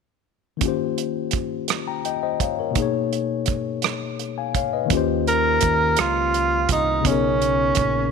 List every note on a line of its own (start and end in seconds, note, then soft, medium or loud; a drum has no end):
0.57 2.70 D#3 medium
0.57 2.71 A#3 soft
0.57 closed hi-hat medium
0.61 2.72 C#4 soft
0.61 2.73 F4 medium
0.61 kick medium
0.66 2.74 G4 medium
0.66 1.70 C5 medium
0.98 closed hi-hat soft
1.31 kick medium
1.31 closed hi-hat medium
1.68 cross-stick medium
1.68 closed hi-hat medium
1.88 2.04 G5 soft
1.88 2.04 A#5 soft
2.05 2.22 D#5 soft
2.05 2.22 G5 medium
2.05 closed hi-hat soft
2.23 2.40 C5 soft
2.23 2.40 D#5 medium
2.40 2.57 C#5 soft
2.40 2.58 F5 soft
2.40 kick medium
2.40 closed hi-hat medium
2.59 2.93 A#4 soft
2.59 2.81 C#5 soft
2.71 4.84 B2 medium
2.71 4.85 A#3 medium
2.75 4.87 D#4 medium
2.75 kick medium
2.75 closed hi-hat medium
2.79 4.88 G#4 medium
2.79 4.19 C#5 medium
3.13 closed hi-hat soft
3.46 kick medium
3.46 closed hi-hat medium
3.82 cross-stick medium
3.82 closed hi-hat medium
4.19 closed hi-hat soft
4.38 4.55 F5 soft
4.38 4.54 G#5 soft
4.55 4.72 C#5 soft
4.55 4.72 F5 medium
4.55 kick medium
4.55 closed hi-hat soft
4.73 5.07 B4 soft
4.73 5.07 D#5 soft
4.86 6.98 D#3 medium
4.86 7.00 A#3 medium
4.90 5.58 D#2 medium
4.90 7.01 C#4 medium
4.90 7.02 F4 medium
4.90 kick medium
4.90 closed hi-hat medium
4.95 7.03 G4 medium
4.95 7.04 C5 medium
5.27 6.03 A#4 medium
5.27 closed hi-hat soft
5.61 5.95 D#2 medium
5.61 kick medium
5.61 closed hi-hat medium
5.97 6.66 C#2 medium
5.97 cross-stick medium
5.97 closed hi-hat medium
6.01 6.71 F4 medium
6.34 closed hi-hat soft
6.69 7.02 C2 medium
6.69 7.09 D#4 medium
6.69 kick medium
6.69 closed hi-hat medium
7.01 8.12 C#3 medium
7.01 8.12 B3 soft
7.05 7.73 B1 medium
7.05 8.12 C#4 medium
7.05 8.12 D#4 soft
7.05 kick medium
7.05 closed hi-hat medium
7.10 8.12 G#4 medium
7.10 8.12 A#4 medium
7.42 closed hi-hat soft
7.75 8.12 A#1 medium
7.75 kick medium
7.75 closed hi-hat medium